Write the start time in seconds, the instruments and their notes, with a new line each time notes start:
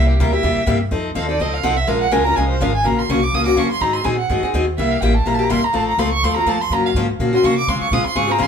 Already playing: upright bass C2, steel-string acoustic guitar C3 G3 A#3 E4 G4
0.09 violin G4
0.19 upright bass D2, steel-string acoustic guitar C3 G3 A#3 E4 G4, violin A#4
0.32 steel-string acoustic guitar A#3 E4 G4, violin E5
0.43 upright bass E2, steel-string acoustic guitar C3 G3 A#3 E4 G4
0.56 muted upright bass stroke
0.66 upright bass G2, steel-string acoustic guitar C3 G3 A#3 E4 G4
0.91 upright bass F2, steel-string acoustic guitar F3 C4 D#4 A4
1.15 upright bass D#2, steel-string acoustic guitar F3 C4 D#4 A4, violin F5
1.29 steel-string acoustic guitar C4 D#4 A4, violin D5
1.39 upright bass C#2, steel-string acoustic guitar F3 C4 D#4 A4, violin D#5
1.54 violin F5
1.63 upright bass C2, steel-string acoustic guitar F3 C4 D#4 A4, violin F#5
1.77 violin E5
1.87 upright bass A#1, steel-string acoustic guitar F3 G#3 C#4 F4 A#4, violin F5
2.01 violin F#5
2.11 upright bass C#2, steel-string acoustic guitar F3 G#3 C#4 F4 A#4, violin G#5
2.24 steel-string acoustic guitar C#4 F4 A#4, violin A#5
2.36 upright bass C2, steel-string acoustic guitar F3 G#3 C#4 F4 A#4, violin G#5
2.49 violin C5
2.60 upright bass G#1, steel-string acoustic guitar F3 G#3 C#4 F4 A#4, violin F5
2.75 violin G#5
2.84 upright bass A#1, steel-string acoustic guitar C#3 F3 A#3 C#4 F#4, violin A#5
2.99 violin C6
3.09 upright bass C2, steel-string acoustic guitar C#3 F3 A#3 C#4 F#4, violin C#6
3.23 violin D6
3.33 upright bass C#2, steel-string acoustic guitar C#3 F3 A#3 C#4 F#4, violin D#6
3.46 steel-string acoustic guitar A#3 C#4 F#4, violin D6
3.56 upright bass F#2, steel-string acoustic guitar C#3 F3 A#3 C#4 F#4, violin C#6
3.71 violin C6
3.80 upright bass G#2, steel-string acoustic guitar D#3 F#3 C4 D#4 G#4, violin A#5
3.93 violin C6
4.04 upright bass A#2, steel-string acoustic guitar D#3 F#3 C4 D#4 G#4, violin G#5
4.18 violin F#5
4.29 upright bass G#2, steel-string acoustic guitar D#3 F#3 C4 D#4 G#4
4.43 steel-string acoustic guitar C4 D#4 G#4, muted upright bass stroke
4.53 upright bass D#2, steel-string acoustic guitar D#3 F#3 C4 D#4 G#4
4.78 upright bass C2, steel-string acoustic guitar C3 G3 A#3 E4 G4, violin E5
4.91 violin F5
5.01 upright bass A1, steel-string acoustic guitar C3 G3 A#3 E4 G4, violin G5
5.15 violin A5
5.26 upright bass A#1, steel-string acoustic guitar C3 G3 A#3 E4 G4, violin A#5
5.34 violin A5
5.39 steel-string acoustic guitar A#3 E4 G4
5.44 violin A#5
5.50 upright bass G1, steel-string acoustic guitar C3 G3 A#3 E4 G4, violin C6
5.64 violin A#5
5.73 upright bass A1, steel-string acoustic guitar F3 A3 C4 F4 A4, violin A5
5.88 violin A#5
5.98 upright bass C#2, steel-string acoustic guitar F3 A3 C4 F4 A4, violin C6
6.12 violin C#6
6.23 upright bass D#2, steel-string acoustic guitar F3 A3 C4 F4 A4, violin C6
6.36 steel-string acoustic guitar C4 F4 A4, violin A#5
6.46 upright bass F2, steel-string acoustic guitar F3 A3 C4 F4 A4, violin A5
6.61 violin C6
6.70 upright bass F#2, steel-string acoustic guitar C#3 F3 A#3 C#4 F#4, violin A#5
6.86 violin F5
6.94 upright bass G#2, steel-string acoustic guitar C#3 F3 A#3 C#4 F#4
7.19 upright bass A#2, steel-string acoustic guitar C#3 F3 A#3 C#4 F#4
7.33 steel-string acoustic guitar A#3 C#4 F#4, violin C6
7.43 upright bass C3, steel-string acoustic guitar C#3 F3 A#3 C#4 F#4, violin C#6
7.58 violin D6
7.67 upright bass C#3, steel-string acoustic guitar C#3 G#3 C4 F4 G#4, violin C6
7.81 violin C#6, muted upright bass stroke
7.91 upright bass A#2, steel-string acoustic guitar C#3 G#3 C4 F4 G#4, violin D#6
8.05 violin C6, muted upright bass stroke
8.15 upright bass G#2, steel-string acoustic guitar C#3 G#3 C4 F4 G#4, violin C#6
8.27 steel-string acoustic guitar C4 F4 G#4, violin A#5
8.38 upright bass F2, steel-string acoustic guitar C#3 G#3 C4 F4 G#4
8.43 violin C6